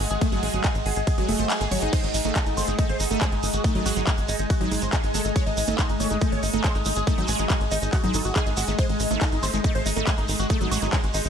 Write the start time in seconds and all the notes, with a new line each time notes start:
Already playing: G#3 G#4 D#5 F#5
0.00 G#1, open hi-hat
0.11 G#1 G#4, closed hi-hat
0.21 A3 G#4, kick, closed hi-hat, ride
0.32 G#1 F#3 G#4, closed hi-hat
0.43 A1 G#3 G#4, open hi-hat
0.54 G#1 F#3 G#4, closed hi-hat
0.64 G#3 G#4, kick, clap, closed hi-hat, ride
0.75 G#1, closed hi-hat
0.86 G#1 G#4, open hi-hat
0.96 G#1 G#4, closed hi-hat
1.07 G#4, kick, closed hi-hat, ride
1.18 G#1 F#3 G#4, closed hi-hat
1.29 F#1 A3 G#4, open hi-hat
1.39 G#1 C5, closed hi-hat
1.50 G#4, clap, closed hi-hat, ride
1.61 G#1 G#4, closed hi-hat
1.71 G#1 F#3 C#5, open hi-hat
1.82 G#1 D#4 G#4, closed hi-hat
1.93 G#3 C5, kick, closed hi-hat, ride, crash, shekere
2.04 G#1 D#4, closed hi-hat
2.14 A1 D#4, open hi-hat, shekere
2.25 G#1 A3 D#4, closed hi-hat, shekere
2.36 D#4 A4, kick, clap, closed hi-hat, ride, shekere
2.46 G#1 D#4 G#5, closed hi-hat
2.57 G#1 A3 C5, open hi-hat, shekere
2.68 G#1 G#3 D#4, closed hi-hat, shekere
2.78 A3 D#4, kick, closed hi-hat, ride, shekere
2.89 G#1 C5, closed hi-hat
3.00 G#1 D#4, open hi-hat, shekere
3.11 G#1 A3 D#4, closed hi-hat, shekere
3.21 G#3 G#4, kick, clap, closed hi-hat, ride, shekere
3.32 G#1 D#4, closed hi-hat
3.43 G#1 D#4, open hi-hat, shekere
3.53 G#1 F#4, closed hi-hat, shekere
3.64 A3 D#4, kick, closed hi-hat, ride, shekere
3.75 G#1 F#3 D#4, closed hi-hat
3.86 A1 G#3 F#4, open hi-hat, shekere
3.96 G#1 F#3 D#4, closed hi-hat, shekere
4.07 G#3 D#4, kick, clap, closed hi-hat, ride, shekere
4.18 G#1, closed hi-hat
4.29 G#1 D#4, open hi-hat, shekere
4.39 G#1 D#4, closed hi-hat, shekere
4.50 F#4, kick, closed hi-hat, ride, shekere
4.61 G#1 F#3 D#4, closed hi-hat
4.71 G#1 G#3 D#4, open hi-hat, shekere
4.82 G#1 C5, closed hi-hat, shekere
4.93 G#3 D#4, kick, clap, closed hi-hat, ride, shekere
5.04 G#1 D#4, closed hi-hat
5.14 G#1 A3 A4, open hi-hat, shekere
5.25 G#1 D#4, closed hi-hat, shekere
5.36 G#3 C#5, kick, closed hi-hat, ride, shekere
5.46 G#1 D#4, closed hi-hat
5.57 A1 D#4, open hi-hat, shekere
5.68 G#1 A3 D#4, closed hi-hat, shekere
5.79 D#4 C5, kick, clap, closed hi-hat, ride, shekere
5.89 G#1 D#4, closed hi-hat
6.00 G#1 A3 C#5, open hi-hat, shekere
6.10 G#1 G#3 D#4, closed hi-hat, shekere
6.21 A3 D#4, kick, closed hi-hat, ride, shekere
6.32 G#1 C#5, closed hi-hat
6.43 G#1 D#4, open hi-hat, shekere
6.54 G#1 A3 D#4, closed hi-hat, shekere
6.64 G#3 C5, kick, clap, closed hi-hat, ride, shekere
6.75 G#1 D#4, closed hi-hat
6.85 G#1 D#4, open hi-hat, shekere
6.96 G#1 G#4, closed hi-hat, shekere
7.07 A3 D#4, kick, closed hi-hat, ride, shekere
7.18 G#1 F#3 D#4, closed hi-hat
7.28 A1 G#3 G#4, open hi-hat, shekere
7.39 G#1 F#3 D#4, closed hi-hat, shekere
7.50 G#3 D#4, kick, clap, closed hi-hat, ride, shekere
7.61 G#1, closed hi-hat
7.71 G#1 D#4, open hi-hat, shekere
7.82 G#1 D#4, closed hi-hat, shekere
7.93 F#4, kick, clap, closed hi-hat, ride, shekere
8.04 G#1 F#3 D#4, closed hi-hat
8.14 G#1 D#4 A4, open hi-hat, shekere
8.25 G#1 F#4, closed hi-hat, shekere
8.35 D#4 G#4, kick, clap, closed hi-hat, ride, shekere
8.46 G#1 D#4 G#4, closed hi-hat
8.57 G#1 G#3 F#4, open hi-hat, shekere
8.68 G#1 A3 D#4, closed hi-hat, shekere
8.78 G#3 C5, kick, closed hi-hat, ride, shekere
8.89 G#1 D#4, closed hi-hat
9.00 A1 D#4, open hi-hat, shekere
9.11 G#1 A3 D#4, closed hi-hat, shekere
9.21 D#4 A4, kick, clap, closed hi-hat, ride, shekere
9.32 G#1 D#4 C6, closed hi-hat
9.43 G#1 A3 C5, open hi-hat, shekere
9.54 G#1 G#3 D#4, closed hi-hat, shekere
9.64 A3 D#4, kick, closed hi-hat, ride, shekere
9.75 G#1 C5, closed hi-hat
9.86 G#1 D#4, open hi-hat, shekere
9.96 G#1 A3 D#4, closed hi-hat, shekere
10.07 G#3 G#4, kick, clap, closed hi-hat, ride, shekere
10.18 G#1 D#4, closed hi-hat
10.28 G#1 D#4, open hi-hat, shekere
10.39 G#1 F#4, closed hi-hat, shekere
10.49 A3 D#4, kick, closed hi-hat, ride, shekere
10.61 G#1 F#3 D#4, closed hi-hat
10.71 A1 G#3 F#4, open hi-hat, shekere
10.82 G#1 F#3 D#4, closed hi-hat, shekere
10.93 G#3 D#4, kick, clap, closed hi-hat, ride, shekere
11.04 G#1, closed hi-hat
11.14 G#1 D#4, open hi-hat, shekere
11.25 G#1 D#4, closed hi-hat, shekere